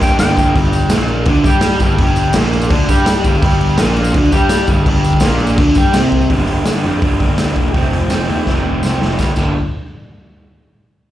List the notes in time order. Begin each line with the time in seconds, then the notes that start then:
Already playing: G2 D3
0.01 A#3 D4 G5, kick, tambourine, crash
0.06 G3
0.19 G1 D3 G3 A#3 G5, snare, tambourine, crash
0.23 D4
0.37 G1 A#3 D4, kick, tambourine, crash
0.41 G3
0.55 G1 G2 G3, kick, tambourine, crash
0.65 tambourine
0.73 tambourine, crash
0.82 tambourine
0.90 A#1 A#2 A#3, snare, tambourine, crash
1.08 tambourine, crash
1.25 D2 D3 D4, kick, tambourine, crash
1.35 tambourine
1.44 G2 G3 G4, kick, tambourine, crash
1.54 tambourine
1.61 snare, tambourine, crash
1.80 G1 G2 G3, kick, tambourine, crash
1.90 tambourine
1.98 G1 G2 G3, kick, tambourine, crash
2.07 tambourine
2.16 tambourine, crash
2.33 A#1 A#2 A#3, snare, tambourine, crash
2.53 tambourine, crash
2.61 tambourine
2.70 D2 D3 D4, kick, crash
2.88 G2 G3 G4, kick, tambourine, crash
3.06 snare, tambourine, crash
3.17 tambourine
3.24 G1 G2 G3, kick, tambourine, crash
3.35 tambourine
3.42 G1 G2 G3, kick, tambourine, crash
3.51 tambourine
3.61 crash
3.70 tambourine
3.78 A#1 A#2 A#3, snare, tambourine, crash
3.87 tambourine
3.96 tambourine, crash
4.04 tambourine
4.14 D2 D3 D4, kick, crash
4.24 tambourine
4.32 G2 G3 G4, kick, tambourine, crash
4.41 tambourine
4.49 snare, tambourine, crash
4.67 G1 G2 G3, kick, tambourine, crash
4.77 tambourine
4.86 G1 G2 G3, kick, crash
4.95 tambourine
5.04 tambourine, crash
5.12 kick, tambourine
5.20 A#1 A#2 A#3, snare, tambourine, crash
5.39 tambourine, crash
5.47 tambourine
5.57 D2 D3 D4, kick, crash
5.75 G2 G3 G4, kick, tambourine, crash
5.86 tambourine
5.93 C2 C3 C4, snare, tambourine, crash
6.12 kick, crash
6.21 tambourine
6.29 G1 G2 D3 G3 A#3, kick, open hi-hat
6.34 D4
6.45 G1, open hi-hat
6.65 G1 D3 G3 A#3 D4, snare, open hi-hat, tambourine
6.83 F2 A#3 D4, open hi-hat
6.88 G3
7.01 G1 G2 D3 G3 A#3, kick, open hi-hat
7.05 D4
7.19 G1 G3 A#3 D4, kick, open hi-hat
7.36 D2 D3 G3 A#3, snare, open hi-hat, tambourine
7.40 D4
7.55 E1, kick, open hi-hat
7.73 F1 F2 C3 F3 A3 C4, kick, open hi-hat
7.92 F1, open hi-hat
8.10 F1 C3 F3 A3 C4, snare, open hi-hat, tambourine
8.27 D#2 F3 A3 C4, open hi-hat
8.46 F1 F2 C3 F3 A3 C4, kick, snare
8.64 F1 F3 A3 C4
8.82 C2 C3 F3 A3, snare, tambourine
8.86 C4
9.01 F1, snare
9.18 G1 G2 D3 G3 A#3 D4, kick, snare, tambourine
9.36 G1 G2 D3 G3 A#3 D4, kick, crash, tambourine